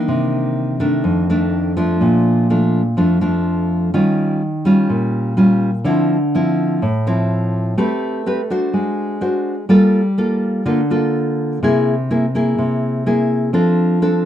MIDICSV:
0, 0, Header, 1, 2, 480
1, 0, Start_track
1, 0, Tempo, 480384
1, 88, Time_signature, 4, 2, 24, 8
1, 14242, End_track
2, 0, Start_track
2, 0, Title_t, "Nylon-string guitar"
2, 0, Program_c, 0, 24
2, 0, Note_on_c, 0, 51, 69
2, 0, Note_on_c, 0, 58, 71
2, 0, Note_on_c, 0, 62, 66
2, 82, Note_on_c, 0, 48, 71
2, 770, Note_off_c, 0, 51, 0
2, 770, Note_off_c, 0, 58, 0
2, 774, Note_off_c, 0, 62, 0
2, 798, Note_on_c, 0, 51, 59
2, 798, Note_on_c, 0, 57, 59
2, 806, Note_on_c, 0, 62, 66
2, 1020, Note_off_c, 0, 48, 0
2, 1038, Note_on_c, 0, 41, 67
2, 1243, Note_off_c, 0, 57, 0
2, 1244, Note_off_c, 0, 51, 0
2, 1248, Note_off_c, 0, 62, 0
2, 1294, Note_on_c, 0, 51, 53
2, 1298, Note_on_c, 0, 57, 62
2, 1305, Note_on_c, 0, 62, 72
2, 1732, Note_off_c, 0, 51, 0
2, 1733, Note_off_c, 0, 57, 0
2, 1737, Note_off_c, 0, 62, 0
2, 1765, Note_on_c, 0, 53, 66
2, 1771, Note_on_c, 0, 57, 61
2, 1775, Note_on_c, 0, 62, 66
2, 1978, Note_off_c, 0, 41, 0
2, 2007, Note_on_c, 0, 46, 77
2, 2487, Note_off_c, 0, 53, 0
2, 2492, Note_off_c, 0, 62, 0
2, 2493, Note_off_c, 0, 57, 0
2, 2499, Note_on_c, 0, 53, 55
2, 2504, Note_on_c, 0, 57, 58
2, 2506, Note_on_c, 0, 62, 59
2, 2802, Note_off_c, 0, 53, 0
2, 2804, Note_off_c, 0, 57, 0
2, 2804, Note_off_c, 0, 62, 0
2, 2942, Note_off_c, 0, 46, 0
2, 2966, Note_on_c, 0, 41, 64
2, 2973, Note_on_c, 0, 53, 54
2, 2974, Note_on_c, 0, 57, 54
2, 2976, Note_on_c, 0, 62, 61
2, 3169, Note_off_c, 0, 53, 0
2, 3172, Note_off_c, 0, 57, 0
2, 3172, Note_off_c, 0, 62, 0
2, 3210, Note_on_c, 0, 53, 63
2, 3217, Note_on_c, 0, 57, 53
2, 3218, Note_on_c, 0, 62, 63
2, 3890, Note_off_c, 0, 53, 0
2, 3890, Note_off_c, 0, 57, 0
2, 3893, Note_off_c, 0, 62, 0
2, 3903, Note_off_c, 0, 41, 0
2, 3933, Note_on_c, 0, 55, 59
2, 3934, Note_on_c, 0, 51, 80
2, 3936, Note_on_c, 0, 61, 66
2, 3940, Note_on_c, 0, 65, 63
2, 4406, Note_off_c, 0, 55, 0
2, 4407, Note_off_c, 0, 61, 0
2, 4408, Note_off_c, 0, 65, 0
2, 4648, Note_on_c, 0, 55, 61
2, 4655, Note_on_c, 0, 61, 58
2, 4660, Note_on_c, 0, 65, 66
2, 4867, Note_off_c, 0, 51, 0
2, 4890, Note_on_c, 0, 46, 65
2, 5330, Note_off_c, 0, 55, 0
2, 5331, Note_off_c, 0, 61, 0
2, 5331, Note_off_c, 0, 65, 0
2, 5365, Note_on_c, 0, 55, 57
2, 5371, Note_on_c, 0, 61, 50
2, 5375, Note_on_c, 0, 65, 65
2, 5688, Note_off_c, 0, 55, 0
2, 5691, Note_off_c, 0, 61, 0
2, 5693, Note_off_c, 0, 65, 0
2, 5824, Note_off_c, 0, 46, 0
2, 5840, Note_on_c, 0, 50, 79
2, 5847, Note_on_c, 0, 53, 63
2, 5847, Note_on_c, 0, 60, 61
2, 5853, Note_on_c, 0, 64, 76
2, 6153, Note_off_c, 0, 53, 0
2, 6156, Note_off_c, 0, 60, 0
2, 6157, Note_off_c, 0, 64, 0
2, 6342, Note_on_c, 0, 53, 58
2, 6348, Note_on_c, 0, 60, 55
2, 6348, Note_on_c, 0, 64, 62
2, 6779, Note_off_c, 0, 50, 0
2, 6812, Note_off_c, 0, 53, 0
2, 6813, Note_off_c, 0, 60, 0
2, 6814, Note_off_c, 0, 64, 0
2, 6817, Note_on_c, 0, 45, 71
2, 7062, Note_on_c, 0, 53, 60
2, 7066, Note_on_c, 0, 60, 61
2, 7068, Note_on_c, 0, 64, 63
2, 7736, Note_off_c, 0, 53, 0
2, 7736, Note_off_c, 0, 60, 0
2, 7739, Note_off_c, 0, 64, 0
2, 7747, Note_off_c, 0, 45, 0
2, 7769, Note_on_c, 0, 57, 82
2, 7774, Note_on_c, 0, 60, 62
2, 7775, Note_on_c, 0, 67, 63
2, 7783, Note_on_c, 0, 71, 67
2, 8211, Note_off_c, 0, 60, 0
2, 8211, Note_off_c, 0, 67, 0
2, 8216, Note_off_c, 0, 71, 0
2, 8256, Note_on_c, 0, 60, 55
2, 8261, Note_on_c, 0, 67, 56
2, 8266, Note_on_c, 0, 71, 61
2, 8392, Note_off_c, 0, 60, 0
2, 8395, Note_off_c, 0, 67, 0
2, 8397, Note_off_c, 0, 71, 0
2, 8496, Note_on_c, 0, 62, 54
2, 8502, Note_on_c, 0, 66, 58
2, 8508, Note_on_c, 0, 72, 72
2, 8704, Note_off_c, 0, 57, 0
2, 8728, Note_on_c, 0, 56, 65
2, 9173, Note_off_c, 0, 62, 0
2, 9176, Note_off_c, 0, 66, 0
2, 9178, Note_off_c, 0, 72, 0
2, 9202, Note_on_c, 0, 62, 47
2, 9207, Note_on_c, 0, 66, 54
2, 9209, Note_on_c, 0, 72, 66
2, 9528, Note_off_c, 0, 62, 0
2, 9528, Note_off_c, 0, 66, 0
2, 9530, Note_off_c, 0, 72, 0
2, 9663, Note_off_c, 0, 56, 0
2, 9681, Note_on_c, 0, 55, 83
2, 9683, Note_on_c, 0, 58, 60
2, 9688, Note_on_c, 0, 65, 69
2, 9693, Note_on_c, 0, 69, 67
2, 9993, Note_off_c, 0, 58, 0
2, 9997, Note_off_c, 0, 65, 0
2, 9997, Note_off_c, 0, 69, 0
2, 10170, Note_on_c, 0, 58, 58
2, 10174, Note_on_c, 0, 65, 55
2, 10176, Note_on_c, 0, 69, 57
2, 10610, Note_off_c, 0, 58, 0
2, 10612, Note_off_c, 0, 65, 0
2, 10612, Note_off_c, 0, 69, 0
2, 10621, Note_off_c, 0, 55, 0
2, 10646, Note_on_c, 0, 50, 69
2, 10647, Note_on_c, 0, 58, 57
2, 10652, Note_on_c, 0, 65, 53
2, 10655, Note_on_c, 0, 69, 63
2, 10788, Note_off_c, 0, 58, 0
2, 10789, Note_off_c, 0, 65, 0
2, 10792, Note_off_c, 0, 69, 0
2, 10895, Note_on_c, 0, 58, 57
2, 10901, Note_on_c, 0, 65, 65
2, 10905, Note_on_c, 0, 69, 62
2, 11573, Note_off_c, 0, 58, 0
2, 11574, Note_off_c, 0, 65, 0
2, 11578, Note_off_c, 0, 69, 0
2, 11583, Note_off_c, 0, 50, 0
2, 11617, Note_on_c, 0, 48, 75
2, 11625, Note_on_c, 0, 58, 54
2, 11630, Note_on_c, 0, 64, 67
2, 11630, Note_on_c, 0, 68, 68
2, 11924, Note_off_c, 0, 58, 0
2, 11924, Note_off_c, 0, 64, 0
2, 11928, Note_off_c, 0, 68, 0
2, 12096, Note_on_c, 0, 58, 56
2, 12097, Note_on_c, 0, 64, 61
2, 12104, Note_on_c, 0, 68, 54
2, 12232, Note_off_c, 0, 64, 0
2, 12233, Note_off_c, 0, 58, 0
2, 12236, Note_off_c, 0, 68, 0
2, 12338, Note_on_c, 0, 58, 56
2, 12343, Note_on_c, 0, 64, 59
2, 12350, Note_on_c, 0, 68, 67
2, 12550, Note_off_c, 0, 48, 0
2, 12574, Note_on_c, 0, 48, 70
2, 13014, Note_off_c, 0, 58, 0
2, 13017, Note_off_c, 0, 64, 0
2, 13018, Note_off_c, 0, 68, 0
2, 13053, Note_on_c, 0, 58, 55
2, 13058, Note_on_c, 0, 64, 62
2, 13058, Note_on_c, 0, 68, 59
2, 13506, Note_off_c, 0, 48, 0
2, 13511, Note_off_c, 0, 58, 0
2, 13512, Note_off_c, 0, 64, 0
2, 13513, Note_off_c, 0, 68, 0
2, 13520, Note_on_c, 0, 53, 80
2, 13525, Note_on_c, 0, 60, 69
2, 13526, Note_on_c, 0, 62, 64
2, 13530, Note_on_c, 0, 69, 61
2, 13966, Note_off_c, 0, 60, 0
2, 13968, Note_off_c, 0, 62, 0
2, 13970, Note_off_c, 0, 69, 0
2, 14008, Note_on_c, 0, 60, 61
2, 14010, Note_on_c, 0, 62, 62
2, 14014, Note_on_c, 0, 69, 58
2, 14242, Note_off_c, 0, 53, 0
2, 14242, Note_off_c, 0, 60, 0
2, 14242, Note_off_c, 0, 62, 0
2, 14242, Note_off_c, 0, 69, 0
2, 14242, End_track
0, 0, End_of_file